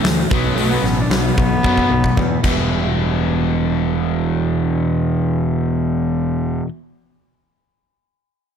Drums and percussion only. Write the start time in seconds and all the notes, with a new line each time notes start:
0.05 snare, open hi-hat
0.31 kick
0.58 open hi-hat
0.85 snare
1.11 snare, open hi-hat
1.38 kick
1.64 kick
1.77 kick
2.04 kick
2.17 kick
2.44 kick, crash